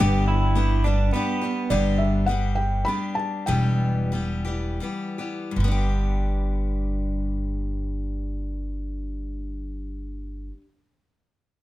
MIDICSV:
0, 0, Header, 1, 5, 480
1, 0, Start_track
1, 0, Key_signature, 1, "major"
1, 0, Tempo, 574163
1, 1420, Time_signature, 3, 2, 24, 8
1, 2391, Tempo, 628931
1, 3351, Tempo, 691244
1, 3831, Tempo, 751880
1, 4311, Tempo, 789474
1, 7997, End_track
2, 0, Start_track
2, 0, Title_t, "Felt piano"
2, 0, Program_c, 0, 0
2, 0, Note_on_c, 0, 79, 83
2, 900, Note_off_c, 0, 79, 0
2, 1421, Note_on_c, 0, 74, 74
2, 1658, Note_on_c, 0, 76, 71
2, 1666, Note_off_c, 0, 74, 0
2, 1882, Note_off_c, 0, 76, 0
2, 1892, Note_on_c, 0, 78, 80
2, 2135, Note_on_c, 0, 79, 81
2, 2147, Note_off_c, 0, 78, 0
2, 2381, Note_on_c, 0, 83, 88
2, 2394, Note_off_c, 0, 79, 0
2, 2600, Note_off_c, 0, 83, 0
2, 2613, Note_on_c, 0, 81, 73
2, 2850, Note_on_c, 0, 79, 76
2, 2861, Note_off_c, 0, 81, 0
2, 3800, Note_off_c, 0, 79, 0
2, 7997, End_track
3, 0, Start_track
3, 0, Title_t, "Clean electric guitar"
3, 0, Program_c, 1, 27
3, 232, Note_on_c, 1, 64, 76
3, 697, Note_off_c, 1, 64, 0
3, 7997, End_track
4, 0, Start_track
4, 0, Title_t, "Steel-string acoustic guitar"
4, 0, Program_c, 2, 25
4, 0, Note_on_c, 2, 43, 76
4, 0, Note_on_c, 2, 50, 80
4, 0, Note_on_c, 2, 55, 80
4, 0, Note_on_c, 2, 59, 82
4, 2, Note_on_c, 2, 62, 81
4, 2, Note_on_c, 2, 67, 84
4, 453, Note_off_c, 2, 55, 0
4, 461, Note_off_c, 2, 59, 0
4, 463, Note_on_c, 2, 55, 58
4, 464, Note_off_c, 2, 43, 0
4, 468, Note_off_c, 2, 50, 0
4, 471, Note_on_c, 2, 59, 60
4, 473, Note_off_c, 2, 62, 0
4, 473, Note_off_c, 2, 67, 0
4, 482, Note_on_c, 2, 62, 62
4, 488, Note_on_c, 2, 67, 58
4, 693, Note_off_c, 2, 67, 0
4, 703, Note_off_c, 2, 55, 0
4, 703, Note_on_c, 2, 67, 55
4, 707, Note_off_c, 2, 59, 0
4, 707, Note_off_c, 2, 62, 0
4, 717, Note_on_c, 2, 62, 50
4, 723, Note_on_c, 2, 59, 46
4, 730, Note_on_c, 2, 55, 46
4, 938, Note_off_c, 2, 55, 0
4, 942, Note_off_c, 2, 67, 0
4, 945, Note_off_c, 2, 59, 0
4, 949, Note_off_c, 2, 62, 0
4, 949, Note_on_c, 2, 55, 57
4, 955, Note_on_c, 2, 59, 60
4, 965, Note_on_c, 2, 62, 55
4, 967, Note_on_c, 2, 67, 71
4, 1172, Note_off_c, 2, 67, 0
4, 1182, Note_on_c, 2, 67, 46
4, 1184, Note_off_c, 2, 55, 0
4, 1187, Note_off_c, 2, 59, 0
4, 1187, Note_off_c, 2, 62, 0
4, 1197, Note_on_c, 2, 62, 42
4, 1202, Note_on_c, 2, 59, 47
4, 1210, Note_on_c, 2, 55, 38
4, 1415, Note_off_c, 2, 55, 0
4, 1419, Note_off_c, 2, 59, 0
4, 1420, Note_off_c, 2, 67, 0
4, 1422, Note_on_c, 2, 43, 79
4, 1425, Note_off_c, 2, 62, 0
4, 1425, Note_on_c, 2, 50, 72
4, 1425, Note_on_c, 2, 55, 74
4, 1429, Note_on_c, 2, 59, 71
4, 1434, Note_on_c, 2, 67, 87
4, 1435, Note_on_c, 2, 62, 79
4, 1898, Note_off_c, 2, 55, 0
4, 1900, Note_off_c, 2, 43, 0
4, 1902, Note_off_c, 2, 50, 0
4, 1902, Note_on_c, 2, 55, 53
4, 1907, Note_off_c, 2, 62, 0
4, 1911, Note_off_c, 2, 59, 0
4, 1914, Note_on_c, 2, 59, 60
4, 1919, Note_on_c, 2, 62, 56
4, 1927, Note_off_c, 2, 67, 0
4, 1931, Note_on_c, 2, 67, 64
4, 2390, Note_off_c, 2, 55, 0
4, 2393, Note_on_c, 2, 55, 51
4, 2400, Note_off_c, 2, 62, 0
4, 2402, Note_off_c, 2, 59, 0
4, 2405, Note_on_c, 2, 59, 51
4, 2409, Note_on_c, 2, 62, 60
4, 2411, Note_off_c, 2, 67, 0
4, 2414, Note_on_c, 2, 67, 56
4, 2855, Note_on_c, 2, 40, 67
4, 2857, Note_on_c, 2, 47, 76
4, 2860, Note_off_c, 2, 55, 0
4, 2863, Note_off_c, 2, 59, 0
4, 2863, Note_on_c, 2, 52, 71
4, 2866, Note_off_c, 2, 62, 0
4, 2866, Note_on_c, 2, 55, 79
4, 2867, Note_off_c, 2, 67, 0
4, 2869, Note_on_c, 2, 59, 80
4, 2870, Note_on_c, 2, 67, 82
4, 3342, Note_off_c, 2, 52, 0
4, 3349, Note_off_c, 2, 55, 0
4, 3350, Note_off_c, 2, 40, 0
4, 3350, Note_off_c, 2, 47, 0
4, 3351, Note_on_c, 2, 52, 53
4, 3356, Note_off_c, 2, 59, 0
4, 3357, Note_off_c, 2, 67, 0
4, 3358, Note_on_c, 2, 55, 53
4, 3366, Note_on_c, 2, 59, 51
4, 3373, Note_on_c, 2, 67, 55
4, 3570, Note_off_c, 2, 67, 0
4, 3578, Note_off_c, 2, 59, 0
4, 3578, Note_on_c, 2, 67, 50
4, 3586, Note_on_c, 2, 59, 43
4, 3587, Note_off_c, 2, 52, 0
4, 3588, Note_off_c, 2, 55, 0
4, 3597, Note_on_c, 2, 55, 42
4, 3599, Note_on_c, 2, 52, 37
4, 3818, Note_off_c, 2, 52, 0
4, 3826, Note_off_c, 2, 55, 0
4, 3827, Note_off_c, 2, 67, 0
4, 3827, Note_on_c, 2, 52, 54
4, 3831, Note_off_c, 2, 59, 0
4, 3834, Note_on_c, 2, 55, 52
4, 3840, Note_on_c, 2, 59, 56
4, 3847, Note_on_c, 2, 67, 56
4, 4061, Note_off_c, 2, 67, 0
4, 4064, Note_off_c, 2, 52, 0
4, 4066, Note_off_c, 2, 59, 0
4, 4067, Note_off_c, 2, 55, 0
4, 4069, Note_on_c, 2, 67, 41
4, 4074, Note_on_c, 2, 59, 41
4, 4081, Note_on_c, 2, 55, 39
4, 4088, Note_on_c, 2, 52, 36
4, 4280, Note_on_c, 2, 43, 60
4, 4312, Note_on_c, 2, 50, 67
4, 4313, Note_off_c, 2, 67, 0
4, 4315, Note_off_c, 2, 59, 0
4, 4319, Note_off_c, 2, 55, 0
4, 4322, Note_off_c, 2, 52, 0
4, 4336, Note_on_c, 2, 55, 72
4, 4359, Note_on_c, 2, 59, 74
4, 4382, Note_on_c, 2, 62, 67
4, 4404, Note_on_c, 2, 67, 75
4, 7303, Note_off_c, 2, 43, 0
4, 7334, Note_off_c, 2, 50, 0
4, 7357, Note_off_c, 2, 55, 0
4, 7380, Note_off_c, 2, 59, 0
4, 7403, Note_off_c, 2, 62, 0
4, 7426, Note_off_c, 2, 67, 0
4, 7997, End_track
5, 0, Start_track
5, 0, Title_t, "Upright bass"
5, 0, Program_c, 3, 32
5, 0, Note_on_c, 3, 31, 92
5, 912, Note_off_c, 3, 31, 0
5, 1425, Note_on_c, 3, 31, 73
5, 2360, Note_off_c, 3, 31, 0
5, 2865, Note_on_c, 3, 28, 68
5, 3807, Note_off_c, 3, 28, 0
5, 4313, Note_on_c, 3, 31, 70
5, 7310, Note_off_c, 3, 31, 0
5, 7997, End_track
0, 0, End_of_file